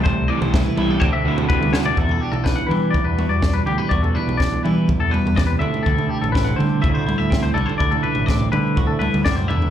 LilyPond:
<<
  \new Staff \with { instrumentName = "Clean electric guitar" } { \time 4/4 \key e \minor \tempo 4 = 124 c''8 d''16 c''8 b'16 a'8 c''16 e''8 c''16 b'8 c''16 d''16 | a'8 g'16 a'16 b'16 fis''16 b'8 d''16 b'8 d''8 b'16 g'16 b'16 | d''16 a'16 b'8 d''8 b'8 r16 a'16 b'8 d''16 b'16 e''8 | a'8 g'16 a'16 b'16 fis''16 c''8 e''16 c''8 e''8 c''16 a'16 c''16 |
d''16 a'16 b'8 d''8 b'8 r16 a'16 b'8 d''16 c''16 e''8 | }
  \new Staff \with { instrumentName = "Clean electric guitar" } { \time 4/4 \key e \minor << { a4. e'16 g'16 c'8 e'4. | e'16 fis'16 d'4 g4 fis'8 d'8 g8 | fis'8 d'4 g2 <a c' e'>8 | e'4 c'4 e'16 fis'16 e'8 c'8 e'8 |
e'4 c'4 fis'8 e'8 c'8 e'8 | } \\ { <c d>4 e4 d4 c8 d8 | e,4. e4 b,4. | e,4. e4 b,8 c8 d8~ | d4 a4 a,4. d8~ |
d4 a4 a,4. d8 | } >> }
  \new Staff \with { instrumentName = "Overdriven electric guitar" } { \time 4/4 \key e \minor <e g c' e'>8 <e g c' e'>8 r8 <e g c' e'>8 r8 <d a c' fis'>8 r8 <d a c' fis'>8 | r1 | r1 | r1 |
r1 | }
  \new Staff \with { instrumentName = "Picked electric bass" } { \clef bass \time 4/4 \key e \minor c,8. c,8. b,,8 d,16 r16 d,8 r16 d,8. | e,8 r16 b,,8. e8 e,8. e,8. d,16 r16 | e,8 r16 b,,8. e8 e,8. e,8. d,16 r16 | d,8 r16 a,,8. d8 d,8. d,8. c,16 r16 |
d,8 r16 a,,8. d8 d,8. d,16 fis,8 e,8 | }
  \new DrumStaff \with { instrumentName = "Drums" } \drummode { \time 4/4 <bd tomfh>8. tomfh16 <bd sn toml>16 tomfh16 toml8 <bd tomfh>8. tomfh16 <bd tommh>16 toml16 sn16 tomfh16 | <bd tomfh>16 tomfh8 tomfh16 <bd sn>16 tomfh16 <tomfh toml>8 <bd tomfh>8 toml8 <bd sn tomfh toml>8 tomfh16 tomfh16 | <bd tomfh>16 tomfh16 tomfh16 tomfh16 <bd sn>16 tomfh16 <tomfh toml>8 <bd tomfh>8 toml16 toml16 <bd sn tomfh toml>8 tomfh16 tomfh16 | <bd tomfh>16 tomfh8 tomfh16 <bd sn>16 tomfh16 <tomfh toml>8 <bd tomfh>8 toml8 <bd sn tomfh toml>8 tomfh16 tomfh16 |
<bd tomfh>16 tomfh16 tomfh16 tomfh16 <bd sn>16 tomfh16 <tomfh toml>8 <bd tomfh>8 toml16 toml16 <bd sn tomfh toml>8 tomfh16 tomfh16 | }
>>